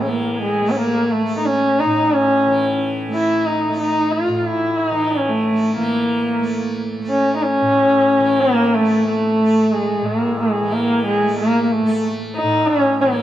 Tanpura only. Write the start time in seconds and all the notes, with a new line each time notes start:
Already playing: A2 A3
0.00 E3
0.62 A3
1.23 A3
1.86 A2
2.47 E3
3.08 A3
3.69 A3
4.29 A2
4.91 E3
5.51 A3
5.77 E3
6.39 A3
6.99 A3
7.62 A2
8.20 E3
8.81 A3
9.41 A3
10.02 A2
10.63 E3
11.23 A3
11.83 A3
12.44 A2
13.03 E3